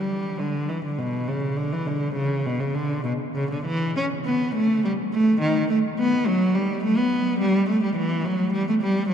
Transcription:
0.00 0.40 G3 medium
0.39 0.69 D3 medium
0.69 0.84 E3 medium
0.85 0.99 D3 medium
0.99 1.28 B2 medium
1.28 1.58 C#3 medium
1.57 1.72 D3 medium
1.73 1.87 E3 medium
1.87 2.16 D3 medium
2.15 2.44 C#3 medium
2.46 2.60 B2 medium
2.60 2.75 C#3 medium
2.75 3.04 D3 medium
3.04 3.12 B2 medium
3.35 3.50 C#3 medium
3.51 3.66 D3 medium
3.66 3.96 E3 medium
3.97 4.05 C#4 medium
4.25 4.54 B3 medium
4.56 4.84 A3 medium
4.84 4.92 G3 medium
5.13 5.41 A3 medium
5.41 5.70 D#3 medium
5.70 5.78 A3 medium
5.99 6.26 B3 medium
6.27 6.55 F#3 loud
6.55 6.84 G3 medium
6.84 6.98 A3 medium
6.98 7.41 B3 medium
7.40 7.68 G3 loud
7.69 7.83 A3 medium
7.84 7.97 G3 medium
7.96 8.24 E3 medium
8.25 8.53 F#3 medium
8.53 8.67 G3 medium
8.69 8.74 A3 medium
8.82 9.09 G3 medium
9.10 9.14 F#3 medium

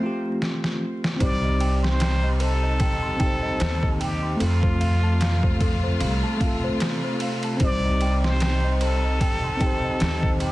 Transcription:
0.00 1.14 A3 medium
0.00 1.16 C4 medium
0.00 0.03 F4 medium
0.00 1.18 F4 medium
0.00 1.23 C5 loud
0.06 1.19 G4 medium
0.42 snare medium
0.64 snare medium
1.04 snare medium
1.17 2.77 C2 medium
1.17 4.38 G3 medium
1.17 3.15 C4 medium
1.17 3.16 D#4 medium
1.17 4.38 D#4 medium
1.17 1.41 C5 medium
1.17 kick loud
1.17 ride medium
1.21 10.52 C3 medium
1.21 3.18 G4 medium
1.21 1.86 D5 loud
1.26 3.19 C5 loud
1.43 1.53 D#5 medium
1.60 1.82 G5 loud
1.60 ride medium
1.83 2.42 C5 loud
1.83 2.00 C6 medium
1.83 snare medium
2.00 2.22 G5 medium
2.00 snare loud
2.00 ride medium
2.23 2.39 D#5 medium
2.40 4.03 A4 loud
2.40 2.62 C5 medium
2.40 ride medium
2.63 2.79 D#5 medium
2.80 3.01 G5 medium
2.80 kick loud
2.80 ride medium
3.03 3.13 C6 medium
3.16 4.34 C4 medium
3.16 4.36 D#4 medium
3.16 3.42 G5 medium
3.16 kick medium
3.16 ride medium
3.23 4.38 G4 medium
3.23 4.39 C5 medium
3.42 3.59 D#5 loud
3.60 4.37 D#2 medium
3.60 3.81 C5 loud
3.60 snare loud
3.60 ride medium
3.83 3.99 D#5 medium
3.83 kick loud
4.00 4.41 G4 medium
4.00 4.22 G5 medium
4.00 ride medium
4.23 4.39 C6 medium
4.36 5.97 F2 loud
4.36 6.34 A3 medium
4.36 6.36 C4 medium
4.36 4.61 A4 medium
4.40 7.57 A3 medium
4.40 7.58 F4 medium
4.40 5.97 F4 loud
4.40 6.38 F4 medium
4.40 ride medium
4.46 6.39 A4 medium
4.63 4.73 C5 medium
4.63 kick medium
4.80 5.02 F5 medium
4.80 ride medium
5.03 5.20 A5 loud
5.20 5.42 F5 medium
5.20 snare loud
5.20 ride medium
5.43 5.59 C5 medium
5.43 kick medium
5.61 5.82 A4 medium
5.61 kick loud
5.61 ride medium
5.83 5.99 C5 medium
6.01 6.21 C2 medium
6.01 6.21 F5 medium
6.01 ride medium
6.23 6.33 A5 medium
6.37 7.55 A3 medium
6.37 7.56 C4 medium
6.37 kick medium
6.37 ride medium
6.41 7.58 F4 medium
6.41 6.62 F5 loud
6.47 7.60 A4 loud
6.64 6.79 C5 loud
6.80 7.01 A4 loud
6.80 snare loud
6.80 ride medium
7.04 7.19 C5 medium
7.20 7.43 F5 medium
7.20 ride medium
7.43 7.60 A5 medium
7.43 ride soft
7.57 9.17 C2 medium
7.57 9.55 C4 medium
7.57 9.56 D#4 medium
7.57 kick loud
7.57 ride medium
7.61 10.52 G3 medium
7.61 10.52 D#4 medium
7.61 9.58 G4 medium
7.61 7.82 C5 medium
7.61 8.28 D5 loud
7.67 9.60 C5 loud
7.84 7.94 D#5 medium
8.01 8.23 G5 medium
8.01 ride medium
8.24 8.84 C5 loud
8.24 8.40 C6 medium
8.24 snare medium
8.40 8.63 G5 medium
8.40 snare loud
8.40 ride medium
8.64 8.79 D#5 medium
8.81 10.44 A4 loud
8.81 9.03 C5 medium
8.81 ride medium
9.04 9.19 D#5 medium
9.21 9.41 G5 medium
9.21 kick loud
9.21 ride medium
9.44 9.54 C6 medium
9.57 10.52 C4 medium
9.57 10.52 D#4 medium
9.57 kick medium
9.57 ride medium
9.61 10.52 G4 medium
9.61 9.82 G5 loud
9.66 10.52 C5 loud
9.84 9.99 D#5 loud
10.00 10.52 D#2 medium
10.00 10.21 C5 loud
10.00 snare loud
10.00 ride medium
10.23 10.39 D#5 medium
10.23 kick loud
10.40 10.52 G4 medium
10.40 10.52 G5 medium
10.40 ride medium

